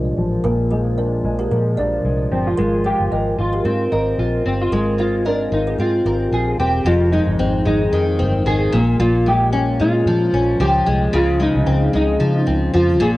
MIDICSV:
0, 0, Header, 1, 5, 480
1, 0, Start_track
1, 0, Tempo, 534759
1, 398, Time_signature, 4, 2, 24, 8
1, 11821, End_track
2, 0, Start_track
2, 0, Title_t, "Kalimba"
2, 0, Program_c, 0, 108
2, 394, Note_on_c, 0, 70, 89
2, 402, Note_on_c, 0, 65, 71
2, 624, Note_off_c, 0, 70, 0
2, 628, Note_off_c, 0, 65, 0
2, 634, Note_on_c, 0, 72, 70
2, 639, Note_on_c, 0, 68, 55
2, 864, Note_off_c, 0, 72, 0
2, 866, Note_off_c, 0, 68, 0
2, 877, Note_on_c, 0, 74, 65
2, 884, Note_on_c, 0, 70, 50
2, 1003, Note_off_c, 0, 74, 0
2, 1006, Note_off_c, 0, 70, 0
2, 1246, Note_on_c, 0, 70, 70
2, 1253, Note_on_c, 0, 67, 56
2, 1348, Note_off_c, 0, 70, 0
2, 1354, Note_off_c, 0, 67, 0
2, 1359, Note_on_c, 0, 70, 73
2, 1366, Note_on_c, 0, 65, 55
2, 1586, Note_off_c, 0, 70, 0
2, 1590, Note_off_c, 0, 65, 0
2, 1592, Note_on_c, 0, 74, 71
2, 1601, Note_on_c, 0, 70, 52
2, 1720, Note_off_c, 0, 74, 0
2, 1725, Note_off_c, 0, 70, 0
2, 2312, Note_on_c, 0, 70, 93
2, 2319, Note_on_c, 0, 65, 77
2, 2543, Note_off_c, 0, 70, 0
2, 2546, Note_off_c, 0, 65, 0
2, 2553, Note_on_c, 0, 72, 75
2, 2561, Note_on_c, 0, 68, 56
2, 2784, Note_off_c, 0, 72, 0
2, 2788, Note_off_c, 0, 68, 0
2, 2799, Note_on_c, 0, 75, 60
2, 2802, Note_on_c, 0, 72, 49
2, 2924, Note_off_c, 0, 75, 0
2, 2926, Note_off_c, 0, 72, 0
2, 3167, Note_on_c, 0, 70, 73
2, 3174, Note_on_c, 0, 67, 54
2, 3266, Note_off_c, 0, 70, 0
2, 3275, Note_off_c, 0, 67, 0
2, 3277, Note_on_c, 0, 70, 65
2, 3283, Note_on_c, 0, 65, 53
2, 3506, Note_off_c, 0, 70, 0
2, 3509, Note_off_c, 0, 65, 0
2, 3520, Note_on_c, 0, 75, 73
2, 3526, Note_on_c, 0, 72, 56
2, 3645, Note_off_c, 0, 75, 0
2, 3648, Note_off_c, 0, 72, 0
2, 4240, Note_on_c, 0, 70, 92
2, 4248, Note_on_c, 0, 65, 75
2, 4468, Note_off_c, 0, 70, 0
2, 4472, Note_off_c, 0, 65, 0
2, 4481, Note_on_c, 0, 72, 74
2, 4487, Note_on_c, 0, 68, 59
2, 4709, Note_off_c, 0, 72, 0
2, 4712, Note_off_c, 0, 68, 0
2, 4715, Note_on_c, 0, 75, 63
2, 4721, Note_on_c, 0, 72, 50
2, 4843, Note_off_c, 0, 75, 0
2, 4846, Note_off_c, 0, 72, 0
2, 5090, Note_on_c, 0, 72, 72
2, 5098, Note_on_c, 0, 68, 56
2, 5183, Note_off_c, 0, 68, 0
2, 5194, Note_off_c, 0, 72, 0
2, 5194, Note_on_c, 0, 68, 69
2, 5203, Note_on_c, 0, 65, 54
2, 5425, Note_off_c, 0, 68, 0
2, 5430, Note_off_c, 0, 65, 0
2, 5439, Note_on_c, 0, 70, 72
2, 5447, Note_on_c, 0, 67, 54
2, 5565, Note_off_c, 0, 70, 0
2, 5569, Note_off_c, 0, 67, 0
2, 11821, End_track
3, 0, Start_track
3, 0, Title_t, "Hollow-body jazz guitar"
3, 0, Program_c, 1, 26
3, 0, Note_on_c, 1, 67, 91
3, 124, Note_off_c, 1, 67, 0
3, 2082, Note_on_c, 1, 60, 73
3, 2216, Note_off_c, 1, 60, 0
3, 2216, Note_on_c, 1, 65, 85
3, 2537, Note_off_c, 1, 65, 0
3, 2568, Note_on_c, 1, 67, 93
3, 3054, Note_off_c, 1, 67, 0
3, 3057, Note_on_c, 1, 65, 81
3, 3495, Note_off_c, 1, 65, 0
3, 4017, Note_on_c, 1, 60, 76
3, 4061, Note_off_c, 1, 60, 0
3, 4143, Note_on_c, 1, 65, 89
3, 4476, Note_off_c, 1, 65, 0
3, 4487, Note_on_c, 1, 65, 90
3, 4731, Note_off_c, 1, 65, 0
3, 4734, Note_on_c, 1, 62, 81
3, 4966, Note_off_c, 1, 62, 0
3, 4969, Note_on_c, 1, 63, 79
3, 5211, Note_off_c, 1, 63, 0
3, 5215, Note_on_c, 1, 65, 80
3, 5688, Note_on_c, 1, 68, 81
3, 5891, Note_off_c, 1, 65, 0
3, 5916, Note_off_c, 1, 68, 0
3, 5920, Note_on_c, 1, 67, 75
3, 6162, Note_on_c, 1, 65, 90
3, 6167, Note_off_c, 1, 67, 0
3, 6391, Note_off_c, 1, 65, 0
3, 6394, Note_on_c, 1, 63, 82
3, 6874, Note_off_c, 1, 63, 0
3, 6885, Note_on_c, 1, 63, 87
3, 7603, Note_on_c, 1, 68, 92
3, 7623, Note_off_c, 1, 63, 0
3, 8077, Note_on_c, 1, 65, 95
3, 8095, Note_off_c, 1, 68, 0
3, 8325, Note_off_c, 1, 65, 0
3, 8330, Note_on_c, 1, 67, 92
3, 8805, Note_on_c, 1, 65, 99
3, 8817, Note_off_c, 1, 67, 0
3, 9520, Note_on_c, 1, 67, 94
3, 9542, Note_off_c, 1, 65, 0
3, 10009, Note_on_c, 1, 65, 98
3, 10012, Note_off_c, 1, 67, 0
3, 10226, Note_off_c, 1, 65, 0
3, 10256, Note_on_c, 1, 63, 92
3, 10692, Note_off_c, 1, 63, 0
3, 10733, Note_on_c, 1, 63, 95
3, 11436, Note_off_c, 1, 63, 0
3, 11440, Note_on_c, 1, 65, 95
3, 11682, Note_on_c, 1, 68, 92
3, 11684, Note_off_c, 1, 65, 0
3, 11745, Note_off_c, 1, 68, 0
3, 11821, End_track
4, 0, Start_track
4, 0, Title_t, "Nylon-string guitar"
4, 0, Program_c, 2, 24
4, 0, Note_on_c, 2, 46, 72
4, 0, Note_on_c, 2, 53, 54
4, 0, Note_on_c, 2, 56, 57
4, 0, Note_on_c, 2, 62, 55
4, 154, Note_off_c, 2, 53, 0
4, 157, Note_on_c, 2, 53, 61
4, 381, Note_off_c, 2, 46, 0
4, 392, Note_on_c, 2, 46, 76
4, 635, Note_off_c, 2, 56, 0
4, 638, Note_on_c, 2, 56, 53
4, 866, Note_off_c, 2, 62, 0
4, 877, Note_on_c, 2, 62, 65
4, 1113, Note_off_c, 2, 56, 0
4, 1116, Note_on_c, 2, 56, 51
4, 1353, Note_off_c, 2, 53, 0
4, 1356, Note_on_c, 2, 53, 57
4, 1593, Note_off_c, 2, 62, 0
4, 1604, Note_on_c, 2, 62, 57
4, 1834, Note_off_c, 2, 56, 0
4, 1838, Note_on_c, 2, 56, 55
4, 2075, Note_off_c, 2, 53, 0
4, 2078, Note_on_c, 2, 53, 60
4, 2315, Note_off_c, 2, 46, 0
4, 2318, Note_off_c, 2, 56, 0
4, 2318, Note_on_c, 2, 56, 75
4, 2374, Note_off_c, 2, 62, 0
4, 2562, Note_on_c, 2, 65, 52
4, 2793, Note_on_c, 2, 70, 58
4, 3034, Note_off_c, 2, 65, 0
4, 3038, Note_on_c, 2, 65, 57
4, 3273, Note_off_c, 2, 53, 0
4, 3277, Note_on_c, 2, 60, 59
4, 3506, Note_off_c, 2, 70, 0
4, 3517, Note_on_c, 2, 70, 55
4, 3758, Note_off_c, 2, 65, 0
4, 3762, Note_on_c, 2, 65, 60
4, 3996, Note_off_c, 2, 60, 0
4, 4000, Note_on_c, 2, 60, 59
4, 4241, Note_off_c, 2, 56, 0
4, 4244, Note_on_c, 2, 56, 67
4, 4469, Note_off_c, 2, 65, 0
4, 4473, Note_on_c, 2, 65, 52
4, 4709, Note_off_c, 2, 70, 0
4, 4720, Note_on_c, 2, 70, 62
4, 4950, Note_off_c, 2, 65, 0
4, 4954, Note_on_c, 2, 65, 56
4, 5199, Note_off_c, 2, 60, 0
4, 5202, Note_on_c, 2, 60, 57
4, 5430, Note_off_c, 2, 70, 0
4, 5441, Note_on_c, 2, 70, 56
4, 5673, Note_off_c, 2, 65, 0
4, 5677, Note_on_c, 2, 65, 54
4, 5917, Note_off_c, 2, 60, 0
4, 5920, Note_on_c, 2, 60, 58
4, 6154, Note_on_c, 2, 41, 82
4, 6213, Note_off_c, 2, 60, 0
4, 6213, Note_off_c, 2, 70, 0
4, 6395, Note_off_c, 2, 65, 0
4, 6398, Note_off_c, 2, 56, 0
4, 6398, Note_on_c, 2, 56, 56
4, 6635, Note_on_c, 2, 60, 69
4, 6866, Note_off_c, 2, 56, 0
4, 6870, Note_on_c, 2, 56, 58
4, 7115, Note_on_c, 2, 51, 65
4, 7341, Note_off_c, 2, 60, 0
4, 7351, Note_on_c, 2, 60, 64
4, 7583, Note_off_c, 2, 51, 0
4, 7594, Note_on_c, 2, 51, 67
4, 7832, Note_on_c, 2, 46, 85
4, 7836, Note_off_c, 2, 41, 0
4, 7887, Note_off_c, 2, 60, 0
4, 7889, Note_off_c, 2, 51, 0
4, 8065, Note_off_c, 2, 46, 0
4, 8076, Note_on_c, 2, 46, 78
4, 8103, Note_off_c, 2, 56, 0
4, 8313, Note_on_c, 2, 56, 58
4, 8550, Note_on_c, 2, 61, 70
4, 8789, Note_off_c, 2, 56, 0
4, 8792, Note_on_c, 2, 56, 61
4, 9039, Note_on_c, 2, 53, 64
4, 9274, Note_off_c, 2, 61, 0
4, 9277, Note_on_c, 2, 61, 62
4, 9511, Note_off_c, 2, 53, 0
4, 9514, Note_on_c, 2, 53, 70
4, 9748, Note_off_c, 2, 56, 0
4, 9752, Note_on_c, 2, 56, 70
4, 9986, Note_off_c, 2, 46, 0
4, 9990, Note_on_c, 2, 49, 85
4, 10049, Note_off_c, 2, 61, 0
4, 10226, Note_off_c, 2, 56, 0
4, 10230, Note_on_c, 2, 56, 61
4, 10470, Note_on_c, 2, 60, 65
4, 10708, Note_off_c, 2, 56, 0
4, 10711, Note_on_c, 2, 56, 58
4, 10946, Note_off_c, 2, 53, 0
4, 10949, Note_on_c, 2, 53, 67
4, 11179, Note_off_c, 2, 60, 0
4, 11190, Note_on_c, 2, 60, 65
4, 11428, Note_off_c, 2, 53, 0
4, 11432, Note_on_c, 2, 53, 64
4, 11665, Note_off_c, 2, 49, 0
4, 11669, Note_on_c, 2, 46, 93
4, 11725, Note_off_c, 2, 60, 0
4, 11821, Note_off_c, 2, 46, 0
4, 11821, Note_off_c, 2, 53, 0
4, 11821, Note_off_c, 2, 56, 0
4, 11821, End_track
5, 0, Start_track
5, 0, Title_t, "Fingered electric bass"
5, 0, Program_c, 3, 33
5, 0, Note_on_c, 3, 36, 88
5, 106, Note_off_c, 3, 36, 0
5, 154, Note_on_c, 3, 33, 81
5, 348, Note_off_c, 3, 33, 0
5, 393, Note_on_c, 3, 34, 96
5, 1079, Note_off_c, 3, 34, 0
5, 1115, Note_on_c, 3, 34, 81
5, 1308, Note_off_c, 3, 34, 0
5, 1357, Note_on_c, 3, 46, 95
5, 1593, Note_on_c, 3, 34, 73
5, 1606, Note_off_c, 3, 46, 0
5, 1787, Note_off_c, 3, 34, 0
5, 1835, Note_on_c, 3, 36, 87
5, 2028, Note_off_c, 3, 36, 0
5, 2072, Note_on_c, 3, 31, 72
5, 2267, Note_off_c, 3, 31, 0
5, 2317, Note_on_c, 3, 32, 87
5, 2615, Note_off_c, 3, 32, 0
5, 2689, Note_on_c, 3, 31, 79
5, 2776, Note_off_c, 3, 31, 0
5, 2798, Note_on_c, 3, 32, 74
5, 2990, Note_off_c, 3, 32, 0
5, 3036, Note_on_c, 3, 32, 77
5, 3229, Note_off_c, 3, 32, 0
5, 3274, Note_on_c, 3, 44, 94
5, 3468, Note_off_c, 3, 44, 0
5, 3518, Note_on_c, 3, 32, 83
5, 3711, Note_off_c, 3, 32, 0
5, 3754, Note_on_c, 3, 34, 88
5, 3948, Note_off_c, 3, 34, 0
5, 3996, Note_on_c, 3, 31, 77
5, 4190, Note_off_c, 3, 31, 0
5, 4235, Note_on_c, 3, 32, 90
5, 4922, Note_off_c, 3, 32, 0
5, 4954, Note_on_c, 3, 32, 82
5, 5148, Note_off_c, 3, 32, 0
5, 5192, Note_on_c, 3, 44, 81
5, 5387, Note_off_c, 3, 44, 0
5, 5433, Note_on_c, 3, 32, 80
5, 5628, Note_off_c, 3, 32, 0
5, 5669, Note_on_c, 3, 34, 78
5, 5866, Note_off_c, 3, 34, 0
5, 5905, Note_on_c, 3, 28, 79
5, 6103, Note_off_c, 3, 28, 0
5, 6144, Note_on_c, 3, 29, 100
5, 6448, Note_off_c, 3, 29, 0
5, 6524, Note_on_c, 3, 31, 82
5, 6614, Note_off_c, 3, 31, 0
5, 6631, Note_on_c, 3, 32, 86
5, 6826, Note_off_c, 3, 32, 0
5, 6868, Note_on_c, 3, 32, 96
5, 7065, Note_off_c, 3, 32, 0
5, 7107, Note_on_c, 3, 41, 89
5, 7354, Note_on_c, 3, 31, 83
5, 7368, Note_off_c, 3, 41, 0
5, 7548, Note_off_c, 3, 31, 0
5, 7589, Note_on_c, 3, 32, 96
5, 7785, Note_off_c, 3, 32, 0
5, 7835, Note_on_c, 3, 34, 94
5, 8028, Note_off_c, 3, 34, 0
5, 8072, Note_on_c, 3, 34, 108
5, 8797, Note_on_c, 3, 46, 92
5, 8811, Note_off_c, 3, 34, 0
5, 8989, Note_off_c, 3, 46, 0
5, 9029, Note_on_c, 3, 46, 111
5, 9224, Note_off_c, 3, 46, 0
5, 9270, Note_on_c, 3, 34, 84
5, 9464, Note_off_c, 3, 34, 0
5, 9512, Note_on_c, 3, 37, 105
5, 9705, Note_off_c, 3, 37, 0
5, 9755, Note_on_c, 3, 36, 87
5, 9947, Note_off_c, 3, 36, 0
5, 9995, Note_on_c, 3, 37, 100
5, 10293, Note_off_c, 3, 37, 0
5, 10365, Note_on_c, 3, 36, 89
5, 10452, Note_off_c, 3, 36, 0
5, 10477, Note_on_c, 3, 37, 92
5, 10668, Note_off_c, 3, 37, 0
5, 10719, Note_on_c, 3, 37, 79
5, 10909, Note_off_c, 3, 37, 0
5, 10955, Note_on_c, 3, 49, 103
5, 11147, Note_off_c, 3, 49, 0
5, 11198, Note_on_c, 3, 37, 93
5, 11388, Note_off_c, 3, 37, 0
5, 11438, Note_on_c, 3, 41, 91
5, 11675, Note_off_c, 3, 41, 0
5, 11675, Note_on_c, 3, 34, 87
5, 11821, Note_off_c, 3, 34, 0
5, 11821, End_track
0, 0, End_of_file